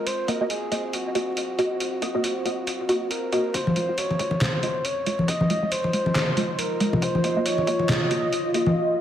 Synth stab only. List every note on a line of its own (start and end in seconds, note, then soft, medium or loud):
0.28 0.38 A#3 medium
0.28 0.38 F#4 medium
0.28 0.38 D#5 medium
0.41 0.69 A#3 medium
0.41 0.69 F#4 medium
0.41 0.69 D#5 loud
0.72 0.82 A#3 medium
0.72 0.82 F#4 medium
0.72 0.82 D#5 medium
1.15 1.25 A#3 medium
1.15 1.25 F#4 medium
1.15 1.25 D#5 medium
1.59 1.74 A#3 medium
1.59 1.74 F#4 medium
1.59 1.74 D#5 loud
2.02 2.12 A#3 medium
2.02 2.12 F#4 medium
2.02 2.12 D#5 loud
2.15 2.43 A#3 medium
2.15 2.43 F#4 medium
2.15 2.43 D#5 loud
2.45 2.56 A#3 medium
2.45 2.56 F#4 medium
2.45 2.56 D#5 medium
2.89 3.04 A#3 medium
2.89 3.04 F#4 medium
2.89 3.04 D#5 loud
3.32 3.43 A#3 medium
3.32 3.43 F#4 medium
3.32 3.43 D#5 loud
3.76 3.86 G#3 medium
3.76 3.86 F4 medium
3.76 3.86 D#5 medium
3.89 4.17 G#3 medium
3.89 4.17 F4 medium
3.89 4.17 D#5 loud
4.19 4.30 G#3 medium
4.19 4.30 F4 medium
4.19 4.30 D#5 medium
4.63 4.73 G#3 medium
4.63 4.73 F4 medium
4.63 4.73 D#5 medium
5.06 5.22 G#3 medium
5.06 5.22 F4 medium
5.06 5.22 D#5 loud
5.50 5.60 G#3 medium
5.50 5.60 F4 medium
5.50 5.60 D#5 loud
5.63 5.91 G#3 medium
5.63 5.91 F4 medium
5.63 5.91 D#5 loud
5.93 6.04 G#3 medium
5.93 6.04 F4 medium
5.93 6.04 D#5 medium
6.37 6.47 G#3 medium
6.37 6.47 F4 medium
6.37 6.47 D#5 medium
6.80 6.96 G#3 medium
6.80 6.96 F4 medium
6.80 6.96 D#5 loud
7.24 7.34 A#3 medium
7.24 7.34 F#4 medium
7.24 7.34 D#5 loud
7.36 7.65 A#3 loud
7.36 7.65 F#4 medium
7.36 7.65 D#5 loud
7.67 7.77 A#3 medium
7.67 7.77 F#4 medium
7.67 7.77 D#5 medium
8.11 8.21 A#3 medium
8.11 8.21 F#4 medium
8.11 8.21 D#5 medium
8.54 8.69 A#3 loud
8.54 8.69 F#4 medium
8.54 8.69 D#5 loud